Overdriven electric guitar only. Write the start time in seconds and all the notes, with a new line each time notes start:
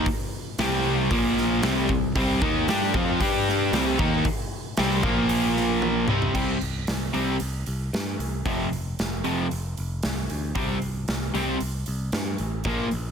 0.60 C3 G3 C4
1.11 A#2 F3 A#3
1.63 C3 G3 C4
1.90 C3 G3
2.16 C3 G3 C4
2.42 D#3 A#3 D#4
2.69 G3 D4 G4
2.94 F3 C4 F4
3.21 G3 D4 G4
3.73 C3 G3 C4
3.99 D#3 A#3 D#4
4.79 C3 G3 C4
5.04 A#2 F3 A#3
6.09 C3 G3 C4
6.35 C3 G3 C4
7.14 C3 G3 C4
8.46 F2 C3 F3
9.24 F2 C3 F3
10.55 C3 G3 C4
11.34 C3 G3 C4
12.66 A#2 F3 A#3